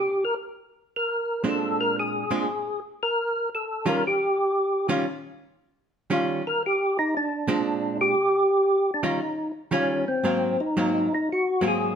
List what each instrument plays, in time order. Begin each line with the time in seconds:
Already playing: tonewheel organ G4
0.25 tonewheel organ A#4
0.96 tonewheel organ A#4
1.44 hollow-body jazz guitar A#2 G#3 C4 D4
1.48 tonewheel organ A4
1.81 tonewheel organ A#4
2.00 tonewheel organ G#4
2.31 hollow-body jazz guitar A#2 G#3 C4 D4
3.03 tonewheel organ A#4
3.55 tonewheel organ A4
3.86 hollow-body jazz guitar D#3 G3 C#4 F4, tonewheel organ A#4
4.07 tonewheel organ G4
4.89 hollow-body jazz guitar D#3 G3 C#4 F4
6.10 hollow-body jazz guitar D#3 G3 C#4 F4
6.47 tonewheel organ A#4
6.66 tonewheel organ G4
6.99 tonewheel organ D#4
7.17 tonewheel organ D4
7.48 hollow-body jazz guitar A#2 G#3 C4 D4
8.01 tonewheel organ G4
8.94 tonewheel organ D4
9.03 hollow-body jazz guitar D#3 G3 C#4 F4, tonewheel organ D#4
9.71 hollow-body jazz guitar D#3 G3 C#4 F4, tonewheel organ C#4
10.08 tonewheel organ C4
10.24 hollow-body jazz guitar G#2 F#3 A#3 C4
10.60 tonewheel organ D#4
10.77 hollow-body jazz guitar G#2 F#3 A#3 C4
11.15 tonewheel organ D#4
11.32 tonewheel organ F#4
11.61 hollow-body jazz guitar G#2 F#3 A#3 C4
11.68 tonewheel organ G#4